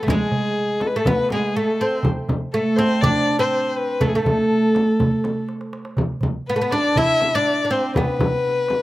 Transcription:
0.03 oud A3, darbuka dum
0.08 oud G#3, violin G#4, frame drum
0.20 darbuka ka
0.31 darbuka dum
0.56 darbuka ka
0.80 violin A4, darbuka tek, frame drum
0.87 violin B4
0.96 oud A3, violin A4
1.05 oud B3, violin B4, darbuka dum, frame drum
1.29 oud G#3, violin G#4, darbuka tek, frame drum
1.56 oud A3, violin A4
1.81 oud C4, violin C5
2.03 darbuka dum, frame drum
2.16 darbuka ka
2.29 darbuka dum, frame drum
2.53 oud A3, violin A4, darbuka ka
2.76 oud C4, violin C5, darbuka tek, frame drum
3.01 oud D4, violin D5, darbuka dum, frame drum
3.27 darbuka tek
3.39 oud C4, violin C5
3.77 violin B4, darbuka ka
4.01 oud A3, violin A4, darbuka dum, frame drum
4.09 violin G#4
4.15 oud A3, violin A4
4.25 darbuka dum, frame drum
4.38 darbuka ka
4.50 darbuka ka
4.75 darbuka tek, frame drum
5.00 darbuka dum, frame drum
5.24 darbuka tek, frame drum
5.49 darbuka tek
5.61 darbuka ka
5.73 darbuka tek
5.85 darbuka ka
5.97 darbuka dum, frame drum
6.10 darbuka ka
6.21 darbuka dum, frame drum
6.46 oud B3, violin B4, darbuka ka
6.56 oud A3
6.62 oud B3
6.71 oud D4, violin D5, darbuka tek, frame drum
6.96 oud E4, violin E5, darbuka dum, frame drum
7.21 darbuka tek, frame drum
7.35 oud D4, violin D5
7.65 oud D4
7.70 oud C4, violin C5, darbuka ka
7.95 oud B3, violin B4, darbuka dum, frame drum
8.08 darbuka ka
8.19 darbuka dum, frame drum
8.44 darbuka ka
8.68 darbuka tek, frame drum

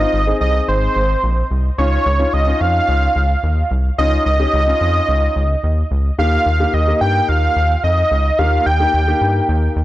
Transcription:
Already playing: analog synth lead D#5
0.00 grand piano C4 D#4 F4
0.13 analog synth bass G#1
0.27 grand piano C4 D#4 G#4
0.41 analog synth bass C2, analog synth lead D#5
0.68 analog synth bass G#1, analog synth lead C5
0.96 analog synth bass G#1
1.23 analog synth bass A#1
1.51 analog synth bass C2
1.78 analog synth bass C#2, grand piano C#4 D#4 F4, analog synth lead C#5
2.06 analog synth bass C#2
2.19 grand piano C#4 D#4 F4
2.33 analog synth bass C#2, analog synth lead D#5
2.47 grand piano C#4 D#4 F4
2.61 analog synth bass F2, analog synth lead F5
2.88 analog synth bass C#2
3.16 analog synth bass C#2
3.43 analog synth bass D#2
3.71 analog synth bass C2
3.98 analog synth bass C#2, grand piano C#4 D#4 F4, analog synth lead D#5
4.26 analog synth bass C#2, analog synth lead D#5
4.40 grand piano C#4 D#4 G4
4.53 analog synth bass C#2
4.67 grand piano C#4 D#4 F4
4.81 analog synth bass F2
5.08 analog synth bass C#2
5.36 analog synth bass C#2
5.64 analog synth bass D#2
5.91 analog synth bass C#2
6.18 analog synth bass D#2, grand piano A#3 D#4 G4, analog synth lead F5
6.46 analog synth bass D#2
6.60 grand piano A#3 D#4 G4
6.74 analog synth bass D#2, analog synth lead D#5
6.87 grand piano A#3 D#4 G4
7.01 analog synth bass G2, analog synth lead G5
7.29 analog synth bass D#2, analog synth lead F5
7.56 analog synth bass D#2
7.84 analog synth bass F2, analog synth lead D#5
8.11 analog synth bass C#2
8.39 analog synth bass D#2, grand piano A#3 D#4 G4, analog synth lead F5
8.66 analog synth bass D#2, analog synth lead G5
8.80 grand piano A#3 D#4 G4
8.94 analog synth bass D#2
9.08 grand piano A#3 D#4 G4
9.21 analog synth bass G2
9.49 analog synth bass D#2
9.76 analog synth bass D#2

